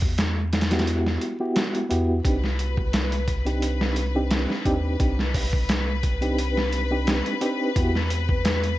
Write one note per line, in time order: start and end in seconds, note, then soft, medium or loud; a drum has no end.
0.00 1.18 E2 loud
0.00 kick medium
0.18 snare loud
0.18 closed hi-hat medium
0.53 snare medium
0.53 closed hi-hat medium
0.61 snare medium
0.61 closed hi-hat medium
0.71 1.35 B3 medium
0.71 1.35 E4 medium
0.71 1.36 F#4 medium
0.71 1.36 G4 medium
0.71 snare medium
0.71 closed hi-hat medium
0.79 snare medium
0.79 closed hi-hat medium
0.87 closed hi-hat medium
1.06 snare soft
1.21 closed hi-hat medium
1.40 1.86 B3 medium
1.40 1.86 E4 medium
1.40 1.86 F#4 medium
1.40 1.87 G4 medium
1.56 snare loud
1.56 closed hi-hat medium
1.75 closed hi-hat soft
1.89 2.21 E2 loud
1.89 2.19 B3 medium
1.89 2.19 E4 medium
1.89 2.20 F#4 medium
1.89 2.20 G4 medium
1.89 closed hi-hat medium
2.24 4.47 C2 loud
2.24 2.44 C4 medium
2.24 2.44 D4 medium
2.24 2.45 D#4 medium
2.24 2.45 G4 medium
2.24 8.79 B4 medium
2.24 kick loud
2.24 closed hi-hat medium
2.44 snare soft
2.59 closed hi-hat medium
2.77 kick loud
2.93 snare loud
2.93 closed hi-hat medium
3.12 closed hi-hat soft
3.28 kick medium
3.28 closed hi-hat medium
3.45 4.10 C4 medium
3.45 4.11 D4 medium
3.45 4.11 D#4 medium
3.45 4.11 G4 medium
3.45 closed hi-hat soft
3.62 closed hi-hat medium
3.81 snare medium
3.96 closed hi-hat medium
4.15 4.62 C4 medium
4.15 4.62 D4 medium
4.15 4.62 D#4 medium
4.15 4.62 G4 medium
4.31 snare loud
4.31 closed hi-hat medium
4.50 snare soft
4.65 4.96 D#2 medium
4.65 4.95 C4 medium
4.65 4.95 D4 medium
4.65 4.95 D#4 medium
4.65 4.96 G4 loud
4.65 kick medium
4.65 closed hi-hat medium
4.99 7.22 C2 medium
4.99 5.20 C4 medium
4.99 5.20 D4 medium
4.99 5.20 D#4 medium
4.99 5.20 G4 medium
4.99 kick loud
4.99 closed hi-hat medium
5.19 snare soft
5.34 kick loud
5.34 open hi-hat medium
5.53 kick loud
5.69 snare loud
5.69 closed hi-hat medium
6.03 kick medium
6.03 closed hi-hat medium
6.21 6.86 C4 medium
6.21 6.87 D4 medium
6.21 6.87 D#4 medium
6.21 6.87 G4 medium
6.21 closed hi-hat soft
6.38 closed hi-hat medium
6.57 snare medium
6.73 closed hi-hat medium
6.91 7.38 C4 medium
6.91 7.38 D4 medium
6.91 7.38 D#4 medium
6.91 7.38 G4 medium
7.07 snare loud
7.07 closed hi-hat medium
7.26 closed hi-hat soft
7.41 7.71 C4 medium
7.41 7.71 D4 medium
7.41 7.71 D#4 medium
7.41 7.71 G4 loud
7.41 closed hi-hat medium
7.75 8.79 E2 medium
7.75 7.96 B3 medium
7.75 7.96 E4 medium
7.75 7.96 F#4 medium
7.75 7.97 G4 medium
7.75 kick loud
7.75 closed hi-hat medium
7.95 snare soft
8.10 closed hi-hat medium
8.29 kick loud
8.45 snare loud
8.45 closed hi-hat medium
8.64 closed hi-hat soft